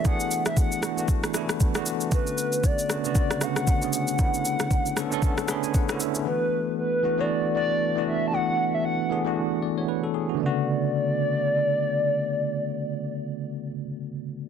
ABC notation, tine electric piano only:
X:1
M:4/4
L:1/16
Q:"Swing 16ths" 1/4=116
K:Bdor
V:1 name="Tine electric piano"
z16 | z16 | z8 z2 b g f2 e2 | z16 |
z8 z2 d c B A G F- | F z12 z3 | z16 |]
V:2 name="Tine electric piano"
[E,A,B,DG]4- [E,A,B,DG] z [E,A,B,DF] [E,A,B,DF]2 z [E,A,B,DE]2 z [E,A,B,DF]2 z | [D,A,B,CF]4- [D,A,B,CF] z [D,A,B,CF] [C,D,A,B,F]2 z [D,A,B,CF]2 z [D,A,B,CG]2 z | [D,A,B,CE]4- [D,A,B,CE] z [D,A,B,CA] [D,A,B,CA]2 z [D,A,B,CG]2 z [D,A,B,CE]2 z | [E,A,B,DF]4- [E,A,B,DF] z [E,A,B,DF] [E,A,B,DF]2 z [E,A,B,DF]2 z [E,A,B,DF]2 z |
[E,A,B,DF]4- [E,A,B,DF] z [E,A,B,DG] [E,A,B,DF]2 z6 z | [C,D,A,B,F]16- | [C,D,A,B,F]16 |]